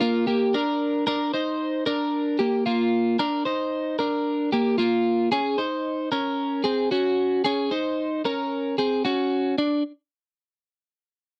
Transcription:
0.01 A#3 F4
0.27 A#3 G4
0.54 D4 A#4
1.07 D4 A#4
1.34 D#4 C5
1.86 D4 A#4
2.39 A#3 G4
2.66 A#3 F4
3.19 D4 A#4
3.45 D#4 C5
3.99 D4 A#4
4.53 A#3 G4
4.78 A#3 F4
5.32 C#4 G#4
5.58 D#4 C5
6.12 C#4 A#4
6.64 C4 G#4
6.91 C#4 F#4
7.44 C#4 G#4
7.71 D#4 C5
8.25 C#4 A#4
8.78 C4 G#4
9.05 C#4 F#4
9.58 D4

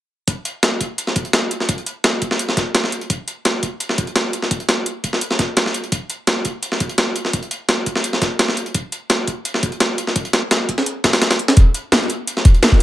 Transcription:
0.28 kick, closed hi-hat
0.45 closed hi-hat
0.63 snare, closed hi-hat
0.81 kick, closed hi-hat
0.98 closed hi-hat
1.07 snare
1.16 kick, closed hi-hat
1.25 closed hi-hat
1.33 snare, closed hi-hat
1.51 closed hi-hat
1.60 snare
1.69 kick, closed hi-hat
1.78 closed hi-hat
1.86 closed hi-hat
2.04 snare, closed hi-hat
2.22 kick, closed hi-hat
2.31 snare
2.39 closed hi-hat
2.49 snare
2.57 kick, snare, closed hi-hat
2.75 snare, closed hi-hat
2.84 snare
2.92 closed hi-hat
3.01 closed hi-hat
3.10 kick, closed hi-hat
3.28 closed hi-hat
3.45 snare, closed hi-hat
3.63 kick, closed hi-hat
3.80 closed hi-hat
3.89 snare
3.98 kick, closed hi-hat
4.07 closed hi-hat
4.16 snare, closed hi-hat
4.33 closed hi-hat
4.42 snare
4.51 kick, closed hi-hat
4.60 closed hi-hat
4.69 snare, closed hi-hat
4.86 closed hi-hat
5.04 kick, closed hi-hat
5.13 snare
5.21 closed hi-hat
5.31 snare
5.39 kick, snare, closed hi-hat
5.57 snare, closed hi-hat
5.66 snare
5.74 closed hi-hat
5.84 closed hi-hat
5.92 kick, closed hi-hat
6.10 closed hi-hat
6.27 snare, closed hi-hat
6.45 kick, closed hi-hat
6.63 closed hi-hat
6.72 snare
6.80 kick, closed hi-hat
6.89 closed hi-hat
6.98 snare, closed hi-hat
7.16 closed hi-hat
7.25 snare
7.33 kick, closed hi-hat
7.43 closed hi-hat
7.51 closed hi-hat
7.69 snare, closed hi-hat
7.86 kick, closed hi-hat
7.96 snare
8.04 closed hi-hat
8.13 snare
8.22 kick, snare, closed hi-hat
8.39 snare, closed hi-hat
8.48 snare
8.57 closed hi-hat
8.66 closed hi-hat
8.74 kick, closed hi-hat
8.92 closed hi-hat
9.10 snare, closed hi-hat
9.27 kick, closed hi-hat
9.45 closed hi-hat
9.54 snare
9.63 kick, closed hi-hat
9.72 closed hi-hat
9.80 snare, closed hi-hat
9.98 closed hi-hat
10.07 snare
10.16 kick, closed hi-hat
10.25 closed hi-hat
10.33 snare, closed hi-hat
10.51 snare, closed hi-hat
10.69 kick, closed hi-hat
10.78 snare
10.86 closed hi-hat
11.04 kick, snare, closed hi-hat
11.13 snare, closed hi-hat
11.22 snare, closed hi-hat
11.31 snare, closed hi-hat
11.39 closed hi-hat
11.48 snare, closed hi-hat
11.57 kick, closed hi-hat
11.74 closed hi-hat
11.92 snare, closed hi-hat
12.10 closed hi-hat
12.27 closed hi-hat
12.37 snare
12.45 kick, closed hi-hat
12.54 closed hi-hat
12.63 snare, closed hi-hat
12.72 kick

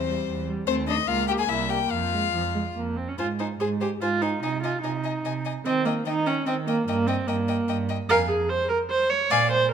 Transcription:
Already playing: E2 C4 C5
0.08 G3
0.27 E2
0.48 G3
0.67 D#2 A3 C4 C5
0.88 A3 D#4 D#5
1.07 C#2 A#3 F4 F5
1.28 A#3 G4 G5
1.39 G#4 G#5
1.49 C2 A#3 E4 E5
1.69 A#3 G4 G5
1.91 F2 F4 F5
2.12 G#3
2.33 F2 F3
2.55 G#3
2.76 F2 A#3
2.97 C4
3.08 C#4
3.18 G#2 F4 C5 G#5
3.39 D#4 C5 G#5
3.59 G#2 G#4 C5 G#5
3.81 G4 C5 G#5
4.01 G#2 F4 C5 G#5
4.21 D#4 C5 G#5
4.42 C3 D#4 D#5 G#5
4.63 F4 D#5 G#5
4.83 C3 D#4 D#5 G#5
5.04 D#5 G#5
5.25 C3 D#5 G#5
5.45 D#5 G#5
5.65 D#3 C4 D#5 G5
5.85 A#3 D#5 G5
6.06 D#3 D#4 D#5 G5
6.26 C#4 D#5 G5
6.47 D#3 C4 D#5 G5
6.67 A#3 D#5 G5
6.87 G2 A#3 D#5 G5
7.07 C4 D#5 G5
7.28 G2 A#3 D#5 G5
7.48 D#5 G5
7.69 G2 D#5 G5
7.89 D#5 G5
8.09 F2 A#4 F5 G#5
8.29 G#4
8.49 C5
8.69 A#4
8.90 C5
9.10 C#5
9.30 A#2 D5 F5 G#5
9.51 C5

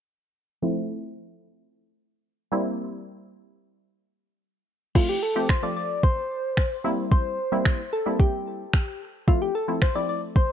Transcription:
0.62 F3 A3 C4 E4
2.52 G3 A#3 C4 E4
4.95 F3 A3 C4 E4 F4, kick, crash
5.09 G4
5.23 A4
5.36 F3 A3 C4 G4
5.49 C5, finger snap, kick
5.63 F3 A3 C4 F4 D5
5.77 D5
6.03 C5, kick
6.57 finger snap, kick
6.84 G3 A#3 C4 E4
7.11 C5, kick
7.52 G3 A#3 C4 E4
7.65 finger snap, kick
7.93 A4
8.06 G3 A#3 C4 E4
8.20 G4, kick
8.73 finger snap, kick
9.27 F3 A3 C4 E4 F4, kick
9.42 G4
9.55 A4
9.68 F3 A3 C4 E4
9.82 C5, finger snap, kick
9.95 F3 A3 C4 E4 D5
10.09 D5
10.36 C5, kick

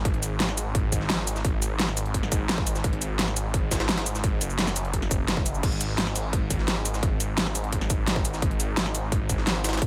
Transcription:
0.05 G#1, kick, closed hi-hat
0.14 closed hi-hat
0.23 closed hi-hat, cabasa
0.40 snare, closed hi-hat
0.49 snare
0.57 closed hi-hat, cabasa
0.75 kick, closed hi-hat
0.92 G#1, kick, closed hi-hat, cabasa
1.01 snare
1.10 snare, closed hi-hat
1.27 closed hi-hat, cabasa
1.36 snare, cabasa
1.45 G#1, kick, closed hi-hat
1.62 closed hi-hat, cabasa
1.79 snare, closed hi-hat
1.88 snare
1.97 closed hi-hat, cabasa
2.06 closed hi-hat
2.14 kick, closed hi-hat
2.23 snare
2.32 G#1, kick, closed hi-hat, cabasa
2.49 snare, closed hi-hat
2.58 kick
2.67 closed hi-hat, cabasa
2.75 snare, cabasa
2.84 G#1, kick, closed hi-hat
2.93 closed hi-hat
3.02 closed hi-hat, cabasa
3.19 snare, closed hi-hat
3.28 snare
3.36 closed hi-hat, cabasa
3.54 kick, closed hi-hat
3.71 G#1, kick, snare, closed hi-hat, cabasa
3.80 snare, closed hi-hat
3.89 snare, closed hi-hat
3.98 snare, closed hi-hat
4.06 closed hi-hat, cabasa
4.15 snare, cabasa
4.24 G#1, kick, closed hi-hat
4.41 F#1, closed hi-hat, cabasa
4.50 cabasa
4.59 snare, closed hi-hat
4.67 snare, cabasa
4.76 closed hi-hat, cabasa
4.85 closed hi-hat
4.93 kick, closed hi-hat
5.02 snare
5.11 kick, closed hi-hat, cabasa
5.28 snare, closed hi-hat
5.37 kick
5.46 closed hi-hat, cabasa
5.55 cabasa
5.63 G#1, kick, closed hi-hat, crash
5.72 closed hi-hat
5.81 closed hi-hat, cabasa
5.98 snare, closed hi-hat
6.07 snare
6.16 closed hi-hat, cabasa
6.33 kick, closed hi-hat
6.50 G#1, kick, closed hi-hat, cabasa
6.59 snare
6.68 snare, closed hi-hat
6.85 closed hi-hat, cabasa
6.94 snare, cabasa
7.03 G#1, kick, closed hi-hat
7.20 closed hi-hat, cabasa
7.38 snare, closed hi-hat
7.46 snare
7.55 closed hi-hat, cabasa
7.64 closed hi-hat
7.72 kick, closed hi-hat
7.81 snare
7.90 G#1, kick, closed hi-hat, cabasa
8.07 snare, closed hi-hat
8.16 kick
8.25 closed hi-hat, cabasa
8.34 snare, cabasa
8.42 G#1, kick, closed hi-hat
8.51 closed hi-hat
8.60 closed hi-hat, cabasa
8.77 snare, closed hi-hat
8.86 snare
8.95 closed hi-hat, cabasa
9.12 kick, closed hi-hat
9.29 G#1, kick, closed hi-hat, cabasa
9.38 snare
9.47 snare, closed hi-hat
9.64 snare, closed hi-hat, cabasa
9.69 snare, closed hi-hat
9.73 snare, closed hi-hat, cabasa
9.77 snare, closed hi-hat
9.82 kick, closed hi-hat

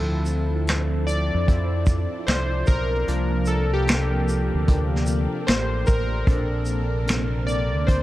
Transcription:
Already playing: D2 F3 C4 D4 E4 A4
0.26 shaker
0.67 finger snap, snare, closed hi-hat
1.07 D5, shaker
1.35 F2
1.48 F3 C4 E4, kick, closed hi-hat
1.86 kick, shaker
2.27 C2 C5, finger snap, snare, closed hi-hat
2.67 B1 A#4, kick, shaker
3.07 C2 C3 F3 A#3 D4, closed hi-hat
3.46 A4, shaker
3.73 G4
3.87 finger snap, snare, closed hi-hat
4.29 shaker
4.54 D2
4.67 F3 A#3 D4, kick, closed hi-hat
4.96 snare
5.06 shaker
5.47 A1 C5, finger snap, snare, closed hi-hat
5.87 A1 A#4, kick, closed hi-hat, shaker
6.27 A#1 C3 C4 D4 A4, kick, closed hi-hat
6.66 shaker
7.07 finger snap, snare, closed hi-hat
7.47 D5, shaker
7.75 D2
7.87 C5, kick, closed hi-hat

